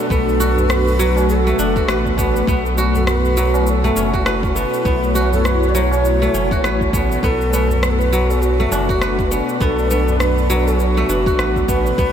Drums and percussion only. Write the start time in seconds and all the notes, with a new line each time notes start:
0.10 kick, cabasa
0.28 tabla tin, cabasa
0.40 tabla na, tabla tin, cabasa
0.57 tabla ge, cabasa
0.70 cross-stick, cabasa
0.88 cabasa
0.99 tabla tin, cabasa
1.16 tabla na, cabasa
1.29 cabasa
1.47 tabla na, cabasa
1.59 cabasa
1.76 kick, tabla tin, cabasa
1.88 cross-stick, cabasa
2.05 kick, tabla na, tabla tin, cabasa
2.17 kick, tabla na, cabasa
2.36 cabasa
2.47 kick, cabasa
2.66 cabasa
2.77 tabla na, cabasa
2.95 tabla ge, cabasa
3.07 cross-stick, cabasa
3.25 cabasa
3.37 cabasa
3.54 tabla na, cabasa
3.67 cabasa
3.83 tabla tin, tabla ge, cabasa
3.95 tabla na, cabasa
4.14 kick, cabasa
4.26 cross-stick, cabasa
4.43 kick, tabla tin, cabasa
4.55 tabla na, cabasa
4.74 cabasa
4.85 kick, cabasa
5.03 tabla tin, cabasa
5.14 tabla na, tabla tin, cabasa
5.33 tabla ge, cabasa
5.45 cross-stick, cabasa
5.63 cabasa
5.75 tabla tin, cabasa
5.91 tabla na, cabasa
6.05 cabasa
6.22 tabla na, cabasa
6.34 cabasa
6.51 kick, cabasa
6.64 cross-stick, cabasa
6.81 kick, tabla na, tabla tin, cabasa
6.93 kick, tabla na, cabasa
7.12 cabasa
7.23 kick, cabasa
7.41 cabasa
7.53 tabla na, cabasa
7.70 tabla ge, cabasa
7.83 cross-stick, cabasa
8.01 cabasa
8.13 cabasa
8.30 tabla na, cabasa
8.42 cabasa
8.60 tabla tin, tabla ge, cabasa
8.72 tabla na, cabasa
8.89 kick, cabasa
9.01 cross-stick, cabasa
9.19 kick, tabla tin, cabasa
9.32 tabla na, cabasa
9.49 cabasa
9.61 kick, cabasa
9.79 tabla tin, cabasa
9.90 tabla na, tabla tin, cabasa
10.08 tabla ge, cabasa
10.20 cross-stick, cabasa
10.38 cabasa
10.50 tabla tin, cabasa
10.68 tabla na, cabasa
10.80 cabasa
10.97 tabla na, cabasa
11.10 cabasa
11.26 kick, tabla tin, cabasa
11.39 cross-stick, cabasa
11.56 kick, tabla na, tabla tin, cabasa
11.68 kick, tabla na, cabasa
11.86 cabasa
11.98 kick, cabasa